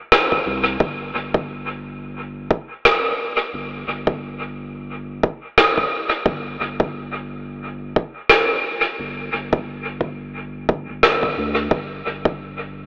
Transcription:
0, 0, Header, 1, 3, 480
1, 0, Start_track
1, 0, Tempo, 681818
1, 565, Time_signature, 4, 2, 24, 8
1, 9054, End_track
2, 0, Start_track
2, 0, Title_t, "Sub bass"
2, 0, Program_c, 0, 38
2, 321, Note_on_c, 0, 36, 103
2, 539, Note_off_c, 0, 36, 0
2, 565, Note_on_c, 0, 31, 93
2, 781, Note_off_c, 0, 31, 0
2, 803, Note_on_c, 0, 31, 91
2, 1745, Note_off_c, 0, 31, 0
2, 2485, Note_on_c, 0, 31, 97
2, 2701, Note_off_c, 0, 31, 0
2, 2723, Note_on_c, 0, 31, 93
2, 3665, Note_off_c, 0, 31, 0
2, 4405, Note_on_c, 0, 31, 96
2, 4621, Note_off_c, 0, 31, 0
2, 4643, Note_on_c, 0, 31, 93
2, 5585, Note_off_c, 0, 31, 0
2, 6325, Note_on_c, 0, 31, 99
2, 6541, Note_off_c, 0, 31, 0
2, 6565, Note_on_c, 0, 31, 92
2, 7506, Note_off_c, 0, 31, 0
2, 7525, Note_on_c, 0, 31, 75
2, 7649, Note_off_c, 0, 31, 0
2, 7666, Note_on_c, 0, 31, 80
2, 7986, Note_off_c, 0, 31, 0
2, 8005, Note_on_c, 0, 38, 88
2, 8221, Note_off_c, 0, 38, 0
2, 8245, Note_on_c, 0, 31, 94
2, 8461, Note_off_c, 0, 31, 0
2, 8486, Note_on_c, 0, 31, 91
2, 9054, Note_off_c, 0, 31, 0
2, 9054, End_track
3, 0, Start_track
3, 0, Title_t, "Drums"
3, 84, Note_on_c, 9, 37, 93
3, 155, Note_off_c, 9, 37, 0
3, 225, Note_on_c, 9, 36, 59
3, 296, Note_off_c, 9, 36, 0
3, 565, Note_on_c, 9, 36, 109
3, 635, Note_off_c, 9, 36, 0
3, 946, Note_on_c, 9, 36, 93
3, 1016, Note_off_c, 9, 36, 0
3, 1764, Note_on_c, 9, 36, 100
3, 1835, Note_off_c, 9, 36, 0
3, 2007, Note_on_c, 9, 37, 86
3, 2078, Note_off_c, 9, 37, 0
3, 2866, Note_on_c, 9, 36, 91
3, 2936, Note_off_c, 9, 36, 0
3, 3685, Note_on_c, 9, 36, 97
3, 3755, Note_off_c, 9, 36, 0
3, 3926, Note_on_c, 9, 37, 89
3, 3997, Note_off_c, 9, 37, 0
3, 4066, Note_on_c, 9, 36, 55
3, 4137, Note_off_c, 9, 36, 0
3, 4405, Note_on_c, 9, 36, 104
3, 4475, Note_off_c, 9, 36, 0
3, 4787, Note_on_c, 9, 36, 93
3, 4857, Note_off_c, 9, 36, 0
3, 5606, Note_on_c, 9, 36, 98
3, 5676, Note_off_c, 9, 36, 0
3, 5840, Note_on_c, 9, 37, 78
3, 5910, Note_off_c, 9, 37, 0
3, 6707, Note_on_c, 9, 36, 94
3, 6777, Note_off_c, 9, 36, 0
3, 7045, Note_on_c, 9, 36, 57
3, 7115, Note_off_c, 9, 36, 0
3, 7525, Note_on_c, 9, 36, 97
3, 7595, Note_off_c, 9, 36, 0
3, 7766, Note_on_c, 9, 37, 78
3, 7836, Note_off_c, 9, 37, 0
3, 7906, Note_on_c, 9, 36, 57
3, 7976, Note_off_c, 9, 36, 0
3, 8245, Note_on_c, 9, 36, 108
3, 8315, Note_off_c, 9, 36, 0
3, 8626, Note_on_c, 9, 36, 99
3, 8697, Note_off_c, 9, 36, 0
3, 9054, End_track
0, 0, End_of_file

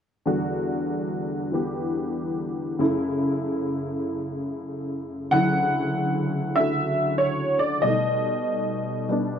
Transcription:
0, 0, Header, 1, 2, 480
1, 0, Start_track
1, 0, Key_signature, 2, "major"
1, 0, Tempo, 631579
1, 196, Time_signature, 4, 2, 24, 8
1, 7138, End_track
2, 0, Start_track
2, 0, Title_t, "Honky-tonk piano"
2, 0, Program_c, 0, 3
2, 194, Note_on_c, 0, 40, 44
2, 195, Note_on_c, 0, 50, 40
2, 198, Note_on_c, 0, 55, 38
2, 204, Note_on_c, 0, 66, 48
2, 1153, Note_on_c, 0, 52, 36
2, 1165, Note_on_c, 0, 59, 32
2, 1174, Note_on_c, 0, 67, 39
2, 2118, Note_off_c, 0, 52, 0
2, 2120, Note_off_c, 0, 40, 0
2, 2120, Note_on_c, 0, 42, 49
2, 2121, Note_off_c, 0, 50, 0
2, 2121, Note_on_c, 0, 49, 42
2, 2122, Note_off_c, 0, 55, 0
2, 2125, Note_off_c, 0, 59, 0
2, 2125, Note_off_c, 0, 66, 0
2, 2126, Note_on_c, 0, 57, 43
2, 2129, Note_off_c, 0, 67, 0
2, 2131, Note_on_c, 0, 64, 52
2, 4034, Note_off_c, 0, 49, 0
2, 4037, Note_on_c, 0, 78, 89
2, 4038, Note_on_c, 0, 38, 44
2, 4040, Note_off_c, 0, 64, 0
2, 4042, Note_off_c, 0, 42, 0
2, 4044, Note_off_c, 0, 57, 0
2, 4045, Note_on_c, 0, 49, 40
2, 4051, Note_on_c, 0, 54, 42
2, 4052, Note_on_c, 0, 64, 51
2, 4968, Note_off_c, 0, 78, 0
2, 4982, Note_on_c, 0, 76, 82
2, 4989, Note_on_c, 0, 50, 39
2, 5002, Note_on_c, 0, 57, 37
2, 5013, Note_on_c, 0, 66, 42
2, 5457, Note_on_c, 0, 73, 73
2, 5485, Note_off_c, 0, 76, 0
2, 5765, Note_off_c, 0, 73, 0
2, 5770, Note_on_c, 0, 74, 75
2, 5941, Note_on_c, 0, 75, 76
2, 5947, Note_on_c, 0, 47, 47
2, 5949, Note_off_c, 0, 74, 0
2, 5952, Note_on_c, 0, 55, 46
2, 5953, Note_off_c, 0, 50, 0
2, 5953, Note_off_c, 0, 57, 0
2, 5956, Note_off_c, 0, 38, 0
2, 5960, Note_off_c, 0, 49, 0
2, 5963, Note_off_c, 0, 54, 0
2, 5963, Note_off_c, 0, 64, 0
2, 5964, Note_on_c, 0, 57, 43
2, 5965, Note_off_c, 0, 66, 0
2, 5983, Note_on_c, 0, 63, 52
2, 6876, Note_off_c, 0, 75, 0
2, 6896, Note_off_c, 0, 55, 0
2, 6908, Note_on_c, 0, 55, 42
2, 6919, Note_on_c, 0, 59, 37
2, 6930, Note_on_c, 0, 62, 48
2, 7138, Note_off_c, 0, 47, 0
2, 7138, Note_off_c, 0, 55, 0
2, 7138, Note_off_c, 0, 57, 0
2, 7138, Note_off_c, 0, 59, 0
2, 7138, Note_off_c, 0, 62, 0
2, 7138, Note_off_c, 0, 63, 0
2, 7138, End_track
0, 0, End_of_file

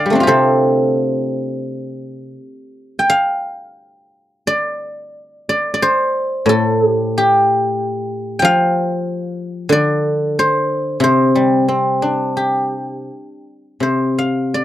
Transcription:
0, 0, Header, 1, 2, 480
1, 0, Start_track
1, 0, Tempo, 678733
1, 206, Time_signature, 4, 2, 24, 8
1, 1170, Tempo, 709220
1, 2130, Tempo, 688073
1, 3570, Tempo, 671141
1, 5010, Tempo, 647948
1, 8370, Tempo, 678733
1, 8850, Tempo, 727273
1, 10355, End_track
2, 0, Start_track
2, 0, Title_t, "Guzheng"
2, 0, Program_c, 0, 107
2, 0, Note_on_c, 0, 50, 67
2, 0, Note_on_c, 0, 74, 84
2, 0, Note_on_c, 0, 77, 64
2, 0, Note_on_c, 0, 79, 102
2, 40, Note_on_c, 0, 55, 36
2, 72, Note_on_c, 0, 57, 39
2, 89, Note_on_c, 0, 60, 41
2, 108, Note_on_c, 0, 62, 44
2, 143, Note_on_c, 0, 65, 53
2, 164, Note_on_c, 0, 67, 53
2, 185, Note_off_c, 0, 55, 0
2, 192, Note_on_c, 0, 48, 64
2, 196, Note_on_c, 0, 69, 58
2, 200, Note_on_c, 0, 72, 79
2, 675, Note_off_c, 0, 50, 0
2, 706, Note_off_c, 0, 79, 0
2, 1105, Note_off_c, 0, 77, 0
2, 1262, Note_off_c, 0, 74, 0
2, 1642, Note_off_c, 0, 48, 0
2, 1721, Note_off_c, 0, 69, 0
2, 1799, Note_off_c, 0, 67, 0
2, 1861, Note_off_c, 0, 72, 0
2, 1896, Note_off_c, 0, 65, 0
2, 2045, Note_off_c, 0, 62, 0
2, 2074, Note_on_c, 0, 79, 69
2, 2146, Note_on_c, 0, 77, 86
2, 2167, Note_off_c, 0, 60, 0
2, 2374, Note_off_c, 0, 57, 0
2, 3106, Note_on_c, 0, 74, 83
2, 3155, Note_off_c, 0, 79, 0
2, 3307, Note_off_c, 0, 77, 0
2, 3821, Note_off_c, 0, 74, 0
2, 3824, Note_on_c, 0, 74, 77
2, 3997, Note_off_c, 0, 74, 0
2, 4000, Note_on_c, 0, 74, 63
2, 4061, Note_on_c, 0, 72, 84
2, 4513, Note_on_c, 0, 45, 55
2, 4538, Note_on_c, 0, 69, 79
2, 4824, Note_off_c, 0, 69, 0
2, 4824, Note_on_c, 0, 67, 79
2, 5029, Note_off_c, 0, 67, 0
2, 5029, Note_on_c, 0, 67, 69
2, 5330, Note_off_c, 0, 74, 0
2, 5493, Note_off_c, 0, 72, 0
2, 5930, Note_on_c, 0, 79, 75
2, 5951, Note_on_c, 0, 53, 58
2, 5961, Note_off_c, 0, 45, 0
2, 5969, Note_on_c, 0, 77, 103
2, 6771, Note_off_c, 0, 67, 0
2, 6892, Note_on_c, 0, 50, 64
2, 6916, Note_on_c, 0, 74, 89
2, 7079, Note_off_c, 0, 79, 0
2, 7203, Note_off_c, 0, 77, 0
2, 7386, Note_off_c, 0, 53, 0
2, 7410, Note_on_c, 0, 72, 83
2, 7861, Note_on_c, 0, 48, 59
2, 7885, Note_off_c, 0, 72, 0
2, 7888, Note_on_c, 0, 72, 75
2, 8124, Note_on_c, 0, 55, 45
2, 8282, Note_off_c, 0, 74, 0
2, 8359, Note_off_c, 0, 50, 0
2, 8369, Note_on_c, 0, 60, 45
2, 8608, Note_on_c, 0, 62, 40
2, 8852, Note_on_c, 0, 67, 43
2, 9082, Note_off_c, 0, 55, 0
2, 9302, Note_off_c, 0, 72, 0
2, 9316, Note_off_c, 0, 48, 0
2, 9324, Note_off_c, 0, 60, 0
2, 9569, Note_off_c, 0, 62, 0
2, 9799, Note_on_c, 0, 48, 34
2, 9811, Note_off_c, 0, 67, 0
2, 9815, Note_on_c, 0, 72, 56
2, 10051, Note_on_c, 0, 77, 58
2, 10287, Note_on_c, 0, 74, 54
2, 10355, Note_off_c, 0, 48, 0
2, 10355, Note_off_c, 0, 72, 0
2, 10355, Note_off_c, 0, 74, 0
2, 10355, Note_off_c, 0, 77, 0
2, 10355, End_track
0, 0, End_of_file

